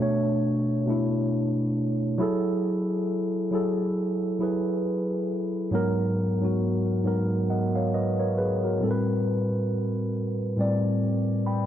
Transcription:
Already playing: B2 C#5
0.00 A3 D4 C#5
0.86 B2 A3 D4
0.90 E4
2.18 F#3 E4 G#4
2.22 A4
3.51 F#3 E4 G#4 A4
4.39 F#3 E4 G#4
4.43 B4
5.71 G#2 F#3 B3
5.75 A#4
6.41 G#2 F#3 B3
6.45 F#4
7.03 G#2 F#3 B3 A#4
7.50 D#5 F#5
7.75 C#5 F5
7.94 B4 D#5
8.19 A#4 C#5
8.38 G#4 B4
8.63 F#4 A#4
8.80 A2 G3 C4
8.84 A4
8.91 B4
10.57 A2 G3 C4 D5
11.46 G5 B5

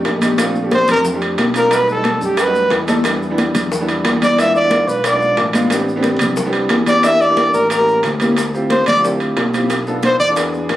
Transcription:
Already playing: A3 D4 D#4 G4
0.05 A#1, high bongo, low bongo, high conga, high timbale, maracas
0.21 A3 D4 D#4 G4, high conga, high timbale, maracas
0.38 A3 C4 D4 F4, high bongo, high conga, high timbale, maracas
0.55 high conga, maracas
0.64 A3 C4 D4 G4
0.71 C5, high bongo, high conga, high timbale, maracas
0.88 F2 A#4, high conga, low conga, high timbale, maracas
1.05 high bongo, high conga, low conga, maracas
1.14 A3 C4 D4 G4
1.21 high timbale, maracas
1.38 B1, high bongo, low bongo, high conga, high timbale, maracas
1.54 A3 C4 D4 F4 A#4, high timbale, maracas
1.71 G3 A3 D#4 F#4 B4, high bongo, high timbale, maracas
1.88 A4, high bongo, high conga, maracas
1.96 G3 A3 D#4 A4
2.04 high bongo, high conga, high timbale, maracas
2.21 F#2 G4, high bongo, maracas
2.37 B4, high bongo, high conga, high timbale, maracas
2.47 G3 A3 D#4 F#4
2.54 high bongo, high conga, maracas
2.70 E2, high bongo, low bongo, high conga, high timbale, maracas
2.88 G3 A3 D#4 A4, high conga, high timbale, maracas
3.04 G3 B3 D4 E4, high bongo, high timbale, maracas
3.22 high conga, maracas
3.30 G3 B3 D4 E4
3.38 high bongo, high conga, high timbale, maracas
3.55 E2, high conga, low conga, high timbale, maracas
3.72 high bongo, high conga, low conga, maracas
3.80 G3 B3 D4 E4
3.88 high conga, high timbale, maracas
4.05 E2, high bongo, low bongo, high conga, high timbale, maracas
4.22 G3 B3 D4 E4 D5, high conga, high timbale, maracas
4.37 G#3 B3 D4 F4 E5, high bongo, high timbale, maracas
4.54 D5, high bongo, high conga, maracas
4.63 G#3 B3 D4 F4
4.71 high bongo, high conga, high timbale, maracas
4.88 B1 B4, high bongo, maracas
5.04 D5, high bongo, high conga, high timbale, maracas
5.12 G#3 B3 D4 F4
5.21 high bongo, high conga, maracas
5.37 A1, high bongo, low bongo, high conga, high timbale, maracas
5.53 G#3 B3 D4 F4, high conga, high timbale, maracas
5.70 B3 C4 D4 G4, high bongo, high timbale, maracas
5.88 high conga, maracas
5.96 B3 C4 D4 G4
6.03 high bongo, high conga, high timbale, maracas
6.19 C2, high conga, low conga, high timbale, maracas
6.37 high bongo, high conga, low conga, maracas
6.46 B3 C4 D4 G4
6.53 high conga, high timbale, maracas
6.69 E2, high bongo, low bongo, high conga, high timbale, maracas
6.86 B3 C4 D4 G4 D5, high conga, high timbale, maracas
7.03 A#3 D4 E4 G4 E5, high bongo, high conga, high timbale, maracas
7.20 D5, high bongo, high conga, maracas
7.29 A#3 D4 E4 G4
7.37 high bongo, high conga, high timbale, maracas
7.54 A1 A#4, high bongo, maracas
7.70 A#4, high bongo, high conga, high timbale, maracas
7.79 A#3 C#4 E4 G4
7.87 high bongo, high conga, maracas
8.03 D2, high bongo, low bongo, high conga, high timbale, maracas
8.20 A#3 C#4 E4 G4, high conga, high timbale, maracas
8.37 high bongo, high timbale, maracas
8.53 C4 E4 F4 G4, high conga, maracas
8.70 C5, high bongo, high conga, high timbale, maracas
8.86 D2 D5, high conga, low conga, high timbale, maracas
8.96 C4 E4 F4 G4
9.04 C4 E4 F4 G4, high bongo, high conga, low conga, maracas
9.20 high conga, high timbale, maracas
9.37 B1, high bongo, low bongo, high conga, high timbale, low timbale, maracas
9.54 C4 E4 F4 G4, high conga, high timbale, maracas
9.70 high bongo, high conga, high timbale, maracas
9.86 B3 D4 F4 A4, high bongo, high conga, maracas
10.03 C5, high bongo, high conga, high timbale, maracas
10.20 E2 D5, high bongo, maracas
10.29 B3 D4 F4 A4
10.36 B3 D4 F#4 G#4, high bongo, high conga, high timbale, maracas
10.53 high bongo, high conga, maracas
10.69 A1, high bongo, low bongo, high conga, high timbale, maracas

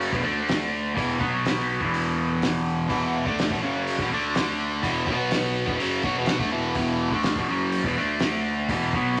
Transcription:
Already playing: F#1 F#2 C#3 F#3
0.01 open hi-hat
0.12 E1 E2 B2, kick
0.22 D2 D3 A3 D4
0.48 snare, open hi-hat
0.95 E1 E2 B2 E3, kick, open hi-hat
1.19 B1 B2 F#3 B3, kick
1.45 snare, open hi-hat
1.59 snare
1.81 E1 E2 B2 E3, kick
1.94 open hi-hat
2.42 snare, open hi-hat
2.89 E1 E2 B2 E3, kick, open hi-hat
3.26 D2 D3 A3 D4, kick
3.38 snare, open hi-hat
3.50 E1 E2 B2, kick, snare
3.62 F#1 F#2 C#3 F#3
3.87 open hi-hat
3.98 E1 E2 B2, kick
4.10 D2 D3 A3 D4
4.35 snare, open hi-hat
4.82 E1 E2 B2 E3, kick, open hi-hat
5.06 B1 B2 F#3 B3, kick
5.31 snare, open hi-hat
5.66 E1 E2 B2, kick
5.79 F#1 F#2 C#3 F#3, open hi-hat
6.03 B1 B2 F#3, kick
6.17 E1 E2 B2
6.26 B1 B2 F#3, snare, open hi-hat
6.39 D2 D3 A3, kick
6.51 E1 E2 B2 E3
6.74 E1 E2 B2 E3, kick, open hi-hat
7.12 D2 D3 A3 D4, kick
7.23 snare, open hi-hat
7.36 E1 E2 B2, kick, snare
7.48 F#1 F#2 C#3 F#3
7.72 open hi-hat
7.83 E1 E2 B2, kick
7.97 D2 D3 A3 D4
8.19 snare, open hi-hat
8.69 E1 E2 B2 E3, kick, open hi-hat
8.93 B1 B2 F#3 B3, kick

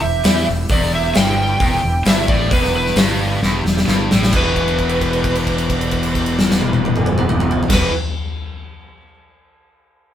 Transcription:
0.02 E1 E2 B3 E4 G4 E5
0.24 E2 E3 B3, snare, open hi-hat
0.28 E4 G4
0.48 E1 E2 B3 E4 G4
0.69 E1 E2 B3 E4 A4 D5, kick, open hi-hat
0.93 B3 E4 G4 E5
1.14 G1 G2 B3 E4 G4 G5, snare, open hi-hat
1.38 B3 E4 G4
1.60 E1 E2 B3 E4 G4, kick, open hi-hat
1.83 E1 E2 B3 E4 G4
2.05 G1 G2 B3 E4 G4 E5, snare, open hi-hat
2.28 A1 A2 B3 E4 G4 D5, kick
2.49 E1 E2 B3 E4 G4 B4, kick, open hi-hat
2.64 snare
2.71 B3 E4 G4
2.76 B4
2.87 snare
2.95 G1 G2 B3 E4 G4, snare, open hi-hat
3.18 B3 E4 G4
3.39 E1 E2 B3 E4 G4, snare
3.63 E1 E2 B3 E4 G4, snare
3.77 snare
3.87 G1 G2 B3 E4 G4, snare
4.11 A1 A2 B3 E4 G4, snare
4.23 snare
4.32 E1 E2 B2 D4 F#4 G4 B4, kick, crash
4.37 E3
4.56 kick, crash
4.68 crash
4.78 kick, crash
4.89 crash
5.01 kick, crash
5.13 crash
5.24 kick, crash
5.35 crash
5.47 kick, crash
5.58 crash
5.70 kick, crash
5.81 crash
5.91 kick, crash
6.03 crash
6.15 kick, crash
6.26 crash
6.39 snare
6.51 snare
6.61 high tom
6.73 high tom
6.85 high tom
6.96 mid tom
7.06 mid tom
7.18 mid tom
7.29 mid tom
7.40 mid tom
7.51 floor tom
7.63 floor tom
7.69 E1 E2 B2 D4 F#4 G4, kick, snare, crash
7.73 E3 B4

